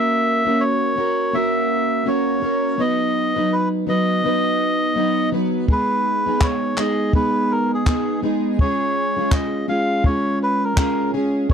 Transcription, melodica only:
0.00 0.63 E5 loud
0.60 1.35 C#5 loud
1.34 2.09 E5 loud
2.08 2.82 C#5 medium
2.80 3.54 D#5 loud
3.53 3.69 B4 medium
3.89 5.30 D#5 loud
5.72 6.45 B4 medium
6.43 6.80 C#5 medium
6.79 7.13 D#5 medium
7.15 7.52 B4 medium
7.52 7.71 A#4 medium
7.74 8.21 G#4 medium
8.60 9.35 C#5 loud
9.33 9.66 D#5 medium
9.69 10.06 F5 loud
10.06 10.39 C#5 medium
10.43 10.64 B4 medium
10.64 11.11 A#4 medium

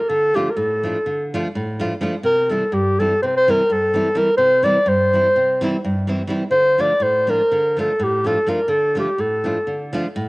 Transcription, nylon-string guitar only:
0.09 0.47 D3 medium
0.34 0.48 F3 medium
0.34 0.48 A3 medium
0.34 0.48 D4 medium
0.34 0.48 F4 medium
0.57 0.95 A2 medium
0.83 0.97 F3 medium
0.83 0.97 A3 medium
0.83 0.97 D4 medium
0.83 0.98 F4 medium
1.06 1.45 D3 medium
1.34 1.47 F3 medium
1.34 1.47 A3 medium
1.34 1.47 D4 medium
1.34 1.47 F4 medium
1.55 1.91 A2 medium
1.80 1.93 F3 medium
1.80 1.93 A3 medium
1.80 1.93 D4 medium
1.80 1.93 F4 loud
2.01 2.14 F3 medium
2.01 2.14 A3 medium
2.01 2.14 D4 medium
2.01 2.15 F4 medium
2.23 2.61 C3 medium
2.49 2.63 E3 medium
2.49 2.63 G3 medium
2.49 2.63 C4 medium
2.49 2.64 E4 medium
2.72 3.10 G2 medium
3.00 3.12 E3 medium
3.00 3.12 G3 medium
3.00 3.13 C4 soft
3.00 3.13 E4 medium
3.23 3.60 C3 medium
3.48 3.61 E3 medium
3.48 3.61 G3 medium
3.48 3.62 C4 medium
3.48 3.62 E4 medium
3.70 4.06 G2 medium
3.94 4.07 E3 medium
3.94 4.07 G3 medium
3.94 4.08 C4 medium
3.94 4.08 E4 medium
4.15 4.28 E3 medium
4.15 4.28 G3 medium
4.15 4.28 C4 medium
4.15 4.29 E4 medium
4.38 4.76 C3 medium
4.63 4.77 E3 medium
4.63 4.77 G3 medium
4.63 4.77 C4 medium
4.63 4.78 E4 medium
4.86 5.25 G2 medium
5.13 5.26 E3 medium
5.13 5.27 G3 medium
5.13 5.27 C4 medium
5.13 5.27 E4 medium
5.36 5.74 C3 medium
5.61 5.75 E3 medium
5.61 5.76 G3 medium
5.61 5.76 C4 medium
5.61 5.76 E4 medium
5.85 6.20 G2 medium
6.07 6.21 E3 medium
6.07 6.21 G3 medium
6.07 6.22 C4 medium
6.07 6.22 E4 medium
6.27 6.42 E3 medium
6.27 6.42 G3 medium
6.27 6.43 C4 medium
6.27 6.43 E4 medium
6.51 6.90 D3 medium
6.78 6.92 F3 medium
6.78 6.92 A3 medium
6.78 6.92 D4 medium
6.78 6.92 F4 medium
7.00 7.39 A2 medium
7.27 7.41 F3 medium
7.27 7.41 A3 medium
7.27 7.41 D4 medium
7.27 7.41 F4 medium
7.51 7.89 D3 medium
7.77 7.90 F3 medium
7.77 7.91 A3 medium
7.77 7.91 D4 medium
7.77 7.91 F4 medium
7.99 8.35 A2 medium
8.24 8.37 F3 medium
8.24 8.37 A3 medium
8.24 8.38 D4 medium
8.24 8.38 F4 medium
8.46 8.58 F3 medium
8.46 8.59 A3 medium
8.46 8.59 D4 medium
8.46 8.59 F4 medium
8.68 9.06 D3 medium
8.95 9.07 F3 medium
8.95 9.08 A3 medium
8.95 9.08 D4 medium
8.95 9.08 F4 medium
9.18 9.56 A2 medium
9.44 9.56 F3 medium
9.44 9.57 A3 medium
9.44 9.57 D4 medium
9.44 9.57 F4 medium
9.67 10.04 D3 medium
9.93 10.05 F3 medium
9.93 10.06 A3 medium
9.93 10.06 D4 medium
9.93 10.06 F4 medium
10.16 10.29 A2 medium

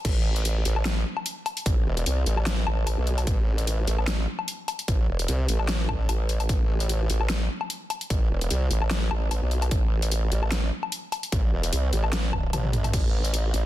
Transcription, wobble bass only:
0.05 0.64 A1 loud
0.65 1.04 A1 loud
1.66 1.85 A1 medium
1.86 2.05 E1 loud
2.06 2.25 C2 loud
2.26 2.65 A1 loud
2.67 2.96 A1 loud
2.98 3.26 B1 loud
3.27 3.86 A1 loud
3.87 4.26 A1 loud
4.88 5.07 A1 loud
5.08 5.27 E1 loud
5.28 5.47 C2 loud
5.48 6.07 A1 medium
6.09 6.48 A1 loud
6.49 7.08 A1 medium
7.10 7.48 A1 loud
8.10 8.29 A1 loud
8.30 8.49 E1 loud
8.51 8.69 C2 medium
8.71 9.09 A1 loud
9.11 9.40 A1 medium
9.42 9.70 B1 loud
9.71 10.30 A1 medium
10.32 10.71 A1 loud
11.32 11.51 A1 loud
11.52 11.71 E1 loud
11.73 11.91 C2 loud
11.93 12.52 A1 loud
12.53 12.92 A1 loud
12.93 13.52 A1 loud
13.54 13.66 A1 loud

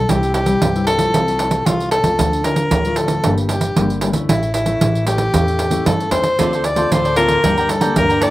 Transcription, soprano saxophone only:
0.00 0.11 A4 loud
0.10 0.34 G4 medium
0.34 0.84 G4 medium
0.87 1.68 A4 loud
1.67 1.91 F4 medium
1.91 2.46 A4 loud
2.45 2.99 A#4 medium
2.97 3.34 A4 medium
3.50 3.98 G4 medium
4.29 4.53 E4 medium
4.54 5.04 E4 medium
5.07 5.88 G4 medium
5.87 6.11 A4 medium
6.12 6.66 C5 loud
6.65 6.93 D5 medium
6.92 7.16 C5 medium
7.17 7.72 A#4 loud
7.70 7.96 A4 medium
7.98 8.25 A#4 medium
8.23 8.30 D5 loud

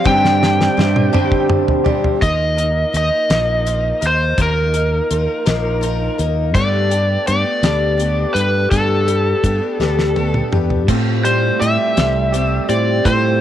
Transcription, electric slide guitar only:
0.07 1.46 G5 loud
2.22 2.96 D#5 loud
2.97 4.07 D#5 loud
4.07 4.42 C5 medium
4.42 6.17 A#4 medium
6.55 7.27 D5 loud
7.28 8.39 D5 loud
8.34 8.71 B4 medium
8.71 10.48 A4 medium
11.25 11.62 C5 medium
11.61 12.69 E5 loud
12.70 13.06 D5 medium
13.05 13.41 C5 medium

